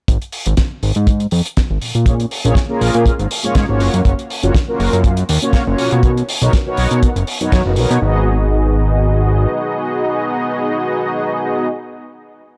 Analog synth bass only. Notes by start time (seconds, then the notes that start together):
0.08 G#1
0.47 G#1
0.83 G#1
0.96 G#2
1.32 F2
1.70 G#1
1.82 A#2
1.95 A#2
2.45 A#1
2.81 A#1
2.95 A#2
3.19 G#1
3.44 G#2
3.55 G#2
3.69 G#1
3.80 F#1
3.94 F#2
4.05 F#1
4.43 F#1
4.80 F#1
4.93 F#2
5.29 D#2
5.67 F#1
5.79 B2
5.92 B2
6.42 B1
6.78 B1
6.91 B2
7.16 F#1
7.41 F#2
7.53 F#2
7.66 F#1
7.77 B1
7.91 B2
8.02 G#1